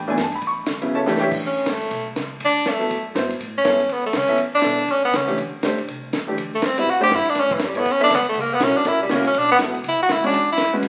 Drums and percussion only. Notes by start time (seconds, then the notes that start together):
0.17 kick, snare, hi-hat pedal, ride
0.32 ride
0.42 kick, ride
0.66 kick, snare, hi-hat pedal, ride
0.82 ride
1.07 snare
1.16 snare, hi-hat pedal
1.31 kick, crash
1.42 kick
1.66 kick, snare, hi-hat pedal, ride
1.81 ride
1.91 kick, ride
2.16 kick, snare, hi-hat pedal, ride
2.40 kick, ride
2.65 kick, snare, hi-hat pedal, ride
2.81 ride
2.91 kick, ride
3.15 kick, snare, hi-hat pedal, ride
3.30 ride
3.40 kick, ride
3.64 kick, snare, hi-hat pedal, ride
3.80 ride
3.89 kick, ride
4.13 kick, snare, hi-hat pedal, ride
4.27 ride
4.38 kick, ride
4.62 kick, snare, hi-hat pedal, ride
4.78 ride
4.88 kick, ride
5.13 kick, snare, hi-hat pedal, ride
5.28 ride
5.38 kick, ride
5.63 kick, snare, hi-hat pedal, ride
5.78 ride
5.88 kick, ride
6.13 kick, snare, hi-hat pedal, ride
6.38 kick, ride
6.62 kick, snare, hi-hat pedal, ride
6.78 ride
6.87 kick
7.11 kick, snare, hi-hat pedal, ride
7.25 ride
7.35 kick, snare, ride
7.51 kick
7.59 kick, snare, hi-hat pedal, ride
7.75 ride
7.85 kick, ride
8.10 kick, snare, hi-hat pedal, ride
8.25 ride
8.35 kick, ride
8.60 kick, snare, hi-hat pedal, ride
8.85 kick, ride
9.09 kick, snare, hi-hat pedal, ride
9.25 ride
9.34 kick, ride
9.59 kick, snare, hi-hat pedal, ride
9.74 ride
9.84 kick, ride
10.09 kick, snare, hi-hat pedal, ride
10.24 ride
10.33 kick, ride
10.57 kick, snare, hi-hat pedal, ride
10.83 kick, ride